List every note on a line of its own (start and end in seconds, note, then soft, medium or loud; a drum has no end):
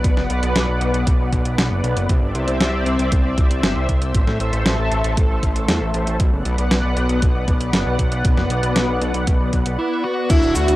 0.00 2.06 B3 medium
0.00 2.06 B4 medium
0.00 2.06 D5 medium
0.00 2.06 F#5 medium
0.04 0.15 B1 loud
0.04 kick loud
0.04 closed hi-hat medium
0.17 0.28 F#1 medium
0.17 snare soft
0.30 0.41 B1 medium
0.30 closed hi-hat medium
0.43 0.54 B1 medium
0.43 closed hi-hat medium
0.55 0.67 B1 loud
0.55 snare loud
0.55 closed hi-hat medium
0.68 0.79 B1 medium
0.81 0.92 B1 medium
0.81 closed hi-hat medium
0.94 1.05 B1 medium
0.94 closed hi-hat medium
1.07 1.18 B1 loud
1.07 kick loud
1.07 closed hi-hat medium
1.20 1.31 B1 medium
1.32 1.44 B1 medium
1.32 kick medium
1.32 closed hi-hat medium
1.45 1.56 B1 medium
1.45 closed hi-hat medium
1.58 1.69 B1 loud
1.58 snare loud
1.58 closed hi-hat medium
1.71 1.82 F#1 medium
1.84 1.95 B1 medium
1.84 closed hi-hat medium
1.96 2.08 F#1 medium
1.96 closed hi-hat medium
2.09 2.21 C2 loud
2.09 4.13 C4 medium
2.09 6.16 C5 medium
2.09 4.13 D5 medium
2.09 6.16 E5 medium
2.09 kick loud
2.09 closed hi-hat medium
2.22 2.33 G1 medium
2.35 2.46 C2 loud
2.35 closed hi-hat medium
2.48 2.59 C2 medium
2.48 closed hi-hat medium
2.60 2.72 C2 loud
2.60 snare loud
2.60 closed hi-hat medium
2.73 2.85 C2 medium
2.86 2.97 C2 medium
2.86 closed hi-hat medium
2.99 3.10 C2 medium
2.99 closed hi-hat medium
3.12 3.23 C2 loud
3.12 kick loud
3.12 closed hi-hat medium
3.25 3.36 C2 medium
3.38 3.49 C2 medium
3.38 kick loud
3.38 closed hi-hat medium
3.50 3.61 C2 medium
3.50 closed hi-hat medium
3.63 3.74 G1 loud
3.63 snare loud
3.63 closed hi-hat medium
3.76 3.87 C2 medium
3.89 4.00 C2 medium
3.89 kick medium
3.89 closed hi-hat medium
4.01 4.13 C2 medium
4.01 closed hi-hat medium
4.15 4.26 A1 loud
4.15 6.18 A3 medium
4.15 6.18 A4 medium
4.15 kick loud
4.15 closed hi-hat medium
4.27 4.38 A2 medium
4.27 snare soft
4.40 4.51 A1 medium
4.40 closed hi-hat medium
4.53 4.64 A1 medium
4.53 closed hi-hat medium
4.66 4.77 A1 loud
4.66 snare loud
4.66 closed hi-hat medium
4.79 4.90 A1 medium
4.91 5.03 A1 medium
4.91 closed hi-hat medium
5.04 5.15 A1 medium
5.04 closed hi-hat medium
5.17 5.28 A1 loud
5.17 kick loud
5.17 closed hi-hat medium
5.30 5.41 A1 medium
5.43 5.54 A1 medium
5.43 kick medium
5.43 closed hi-hat medium
5.56 5.67 A1 medium
5.56 closed hi-hat medium
5.68 5.79 E2 loud
5.68 snare loud
5.68 closed hi-hat medium
5.81 5.92 A1 medium
5.94 6.05 A1 medium
5.94 closed hi-hat medium
6.07 6.18 A1 medium
6.07 closed hi-hat medium
6.20 6.31 B1 loud
6.20 10.26 B3 medium
6.20 10.26 B4 medium
6.20 10.26 D5 medium
6.20 10.26 F#5 medium
6.20 kick loud
6.20 closed hi-hat medium
6.33 6.44 F#1 medium
6.45 6.57 B1 medium
6.45 closed hi-hat medium
6.58 6.69 B1 medium
6.58 closed hi-hat medium
6.71 6.82 B1 loud
6.71 snare loud
6.71 closed hi-hat medium
6.84 6.95 B1 medium
6.96 7.08 B1 loud
6.96 closed hi-hat medium
7.09 7.20 B1 medium
7.09 closed hi-hat medium
7.22 7.34 B1 loud
7.22 kick loud
7.22 closed hi-hat medium
7.35 7.46 B1 medium
7.48 7.59 B1 loud
7.48 kick medium
7.48 closed hi-hat medium
7.60 7.72 B1 medium
7.60 closed hi-hat medium
7.73 7.84 F#1 loud
7.73 snare loud
7.73 closed hi-hat medium
7.86 7.97 B1 medium
7.99 8.10 B1 medium
7.99 kick medium
7.99 closed hi-hat medium
8.11 8.23 B1 medium
8.11 closed hi-hat medium
8.25 8.36 B1 loud
8.25 kick loud
8.25 closed hi-hat medium
8.37 8.49 F#1 medium
8.37 snare soft
8.50 8.61 B1 medium
8.50 closed hi-hat medium
8.63 8.74 B1 medium
8.63 closed hi-hat medium
8.76 8.87 B1 loud
8.76 snare loud
8.76 closed hi-hat medium
8.89 9.00 B1 medium
9.01 9.13 B1 medium
9.01 closed hi-hat medium
9.14 9.26 B1 medium
9.14 closed hi-hat medium
9.27 9.39 B1 loud
9.27 kick loud
9.27 closed hi-hat medium
9.40 9.51 B1 medium
9.53 9.64 B1 medium
9.53 kick medium
9.53 closed hi-hat medium
9.66 9.77 B1 medium
9.66 closed hi-hat medium
9.79 10.04 E4 medium
10.04 10.30 F#4 medium
10.30 10.41 D2 loud
10.30 10.76 D3 medium
10.30 10.76 D4 medium
10.30 10.56 E4 medium
10.30 10.76 E4 medium
10.30 10.55 E4 medium
10.30 10.76 E4 medium
10.30 10.76 F#4 medium
10.30 kick loud
10.30 closed hi-hat loud
10.30 crash loud
10.30 cabasa soft
10.43 10.54 D1 medium
10.43 cabasa soft
10.55 10.67 D2 medium
10.55 10.76 F#4 loud
10.55 10.76 F#4 medium
10.55 closed hi-hat medium
10.55 cabasa medium
10.68 10.76 D2 medium
10.68 closed hi-hat medium
10.68 cabasa soft